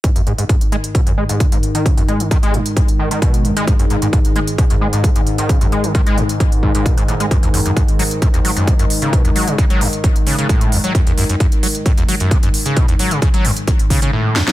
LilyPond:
<<
  \new Staff \with { instrumentName = "Synth drone" } { \clef bass \time 4/4 \key fis \dorian \tempo 4 = 132 <gis, dis>1~ | <gis, dis>1~ | <gis, dis>1~ | <gis, dis>1~ |
<gis, dis>1~ | <gis, dis>1~ | <gis, dis>1~ | <gis, dis>2. r4 | }
  \new Staff \with { instrumentName = "Acid bass" } { \clef bass \time 4/4 \key fis \dorian gis,16 fis,16 gis,16 gis,16 gis,16 r16 gis16 r16 b,16 fis,16 gis16 gis,16 dis16 gis,16 r16 dis16 | cis16 fis,16 gis16 dis16 dis16 gis16 gis,16 r16 gis,16 r16 dis16 dis16 b,8 fis,16 gis16 | gis,16 fis,16 gis,16 gis,16 gis,16 r16 gis16 r16 b,16 fis,16 gis16 gis,16 dis16 gis,16 r16 dis16 | cis16 fis,16 gis16 dis16 dis16 gis16 gis,16 r16 gis,16 r16 gis,16 gis,16 b,16 gis,16 a,16 gis16 |
fis,16 e,16 fis,16 fis,16 fis,16 r16 fis16 r16 a,16 e,16 fis16 fis,16 cis16 fis,16 r16 cis16 | b,16 e,16 fis16 cis16 r16 fis16 fis,16 r16 fis,16 r16 cis16 cis16 a,8 e,16 fis16 | fis,16 e,16 fis,16 fis,16 fis,16 r16 fis16 r16 a,16 e,16 fis16 fis,16 cis16 fis,16 r16 cis16 | b,16 e,16 fis16 cis16 r16 fis16 fis,16 r16 fis,16 r16 cis16 cis16 a,8 e,16 fis16 | }
  \new DrumStaff \with { instrumentName = "Drums" } \drummode { \time 4/4 <hh bd>16 hh16 hh16 hh16 <hh bd>16 hh16 hh16 hh16 <hh bd>16 hh8 hh16 <hh bd>16 hh16 hh16 hh16 | <hh bd>16 hh16 hh16 hh16 <hh bd>16 hh16 hh16 hh16 <hh bd>16 hh8 hh16 <hh bd>16 hh16 hh16 hh16 | <hh bd>16 hh16 hh16 hh16 <hh bd>16 hh16 hh16 hh16 <hh bd>16 hh8 hh16 <hh bd>16 hh16 hh16 hh16 | <hh bd>16 hh16 hh16 hh16 <hh bd>16 hh16 hh16 hh16 <hh bd>16 hh16 bd16 hh16 <hh bd>16 hh16 hh16 hh16 |
<hh bd>16 hh16 hho16 hh16 <hh bd>16 hh16 hho16 hh16 <hh bd>16 hh16 hho16 hh16 <hh bd>16 hh16 hho16 hh16 | <hh bd>16 hh16 hho16 hh16 <hh bd>16 hh16 hho16 hh16 <hh bd>16 hh16 hho16 hh16 <hh bd>16 hh16 hho16 hh16 | <hh bd>16 hh16 hho16 hh16 <hh bd>16 hh16 hho16 hh16 <hh bd>16 hh16 hho16 hh16 <hh bd>16 hh16 hho16 hh16 | <hh bd>16 hh16 hho16 hh16 <hh bd>16 hh16 hho16 hh16 <hh bd>16 hh16 <hho bd>16 hh16 r8 sn16 sn16 | }
>>